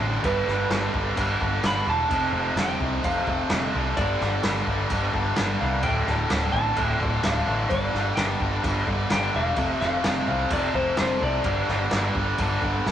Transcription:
Already playing: D5
0.00 A1 D2 A2 D3
0.22 G1 G2 D3 G3 B4, kick, crash
0.46 G1 G2 D3 G3, snare
0.70 G1 G2 D3 G3, snare, crash
0.93 G1 G2 D3 G3, kick
1.15 G1 G2 D3 G3, kick, crash
1.39 G1 G2 D3 G3, kick
1.63 G1 G2 D3 G3 B5, snare, crash
1.87 E1 G2 D3 G3 A5
2.09 F1 F2 C3 F3, kick, crash
2.33 F1 F2 C3 F3
2.56 F1 F2 C3 F3 G5, snare, crash
2.80 C2 F2 C3 F3, kick
3.03 F1 F2 C3 F3 F5, kick, crash
3.27 F1 F2 C3 F3, kick
3.50 F1 F2 C3 F3, snare, crash
3.73 C2 F2 C3 F3
3.97 G1 G2 D3 G3 D5, kick, crash
4.20 G1 G2 D3 G3, snare
4.43 G1 G2 D3 G3, snare, crash
4.67 G1 G2 D3 G3, kick
4.90 G1 G2 D3 G3, kick, crash
5.14 G1 G2 D3 G3, kick
5.36 G1 G2 D3 G3, snare, crash
5.60 C2 G2 D3 G3 F5
5.83 D1 D2 A2 D3 G5, kick, crash
6.06 D1 D2 A2 D3, snare
6.29 D1 D2 A2 D3, snare, crash
6.52 A1 D2 A2 D3 A5, kick
6.76 D1 D2 A2 D3, kick, crash
7.00 D1 D2 A2 D3, kick
7.22 D1 D2 A2 D3 F5, snare, crash
7.46 A1 D2 A2 D3
7.69 G1 G2 D3 G3 D5, kick, crash
7.94 G1 G2 D3 G3, snare
8.15 G1 G2 D3 G3 G5, snare, crash
8.40 G1 G2 D3 G3, kick
8.63 G1 G2 D3 G3, kick, crash
8.86 G1 G2 D3 G3, kick
9.10 G1 G2 D3 G3 G5, snare, crash
9.33 E1 G2 D3 G3 F5
9.56 F1 F2 C3 F3, kick, crash
9.80 F1 F2 C3 F3 F5, snare
10.03 F1 F2 C3 F3, snare, crash
10.27 C2 F2 C3 F3 F5, kick
10.50 F1 F2 C3 F3 D5, kick, crash
10.74 F1 F2 C3 F3 C5, kick
10.97 F1 F2 C3 F3 C5, snare, crash
11.21 C2 F2 C3 F3 D5
11.44 G1 G2 D3 G3, kick, crash
11.68 G1 G2 D3 G3, snare
11.91 G1 G2 D3 G3, snare, crash
12.15 G1 G2 D3 G3, kick
12.38 G1 G2 D3 G3, kick, crash
12.62 G1 G2 D3 G3, kick
12.86 G1 G2 D3 G3, snare

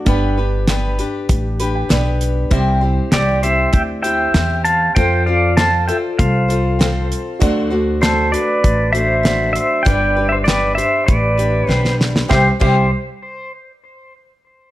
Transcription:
0.05 G1 G3 B3 D4 G4 B4, kick, closed hi-hat
0.37 D4 G4 B4
0.68 B3 D4 G4 B4, snare, closed hi-hat
0.98 D4 G4 B4, closed hi-hat
1.29 A1, kick, closed hi-hat
1.60 D4 G4 B4 B5, closed hi-hat
1.75 G5
1.89 B1 B3 D4 G4 B4 D5, snare, closed hi-hat
2.21 closed hi-hat
2.50 C2 C3 G3 C4 E4 G4 C5, kick, closed hi-hat
2.81 C4 E4 G4 C5
3.12 C2 C4 E4 G4 C5 D5, snare, closed hi-hat
3.43 C4 E4 G4 C5 E5, closed hi-hat
3.73 D2 E5 G5, kick, closed hi-hat
4.02 C4 E4 G4 C5 E5 G5, closed hi-hat
4.34 E2 C4 G4 C5, snare, closed hi-hat
4.64 F5 A5, closed hi-hat
4.95 F2 F3 C4 F4 A4 C5 G5, kick, closed hi-hat
4.99 C5
5.26 F4 A4 C5 D5 F5
5.57 C4 F4 A4 C5 F5 A5, snare, closed hi-hat
5.88 F4 A4 C5 E5 G5, closed hi-hat
6.19 C2 C5 F5, kick, closed hi-hat
6.48 F4 A4 C5, closed hi-hat
6.79 C4 F4 A4 C5, snare, closed hi-hat
7.12 closed hi-hat
7.39 D2 D3 F#3 A3 D4 F#4 A4 C5 D5, kick, closed hi-hat
7.70 A3 D4 F#4 C5
8.01 A3 D4 F#4 A4 C5, snare, closed hi-hat
8.32 A3 D4 F#4 B4 D5, closed hi-hat
8.64 A1, kick, closed hi-hat
8.93 A3 D4 F#4 C5 E5, closed hi-hat
9.23 A3 D4 F#4 C5, snare, closed hi-hat
9.53 C5 E5, closed hi-hat
9.83 G1 G3 B3 D4 G4 B4 D5 G5, kick, closed hi-hat
9.87 D5 B5
10.16 D4 G4 B4
10.29 C5 E5
10.44 B3 D4 G4 B4 D5, snare, closed hi-hat
10.48 B4
10.75 D4 G4 C5 E5, closed hi-hat
11.06 A1 B4 D5, kick, closed hi-hat
11.37 D4 G4 B4, closed hi-hat
11.67 B1 B3 D4 G4 B4 C5, snare
11.85 snare
12.01 snare
12.16 snare
12.28 C2 C3 G3 C4 E4 G4 C5 E5, kick, snare
12.59 C2 C3 G3 C4 E4 G4 C5 E5, kick, crash

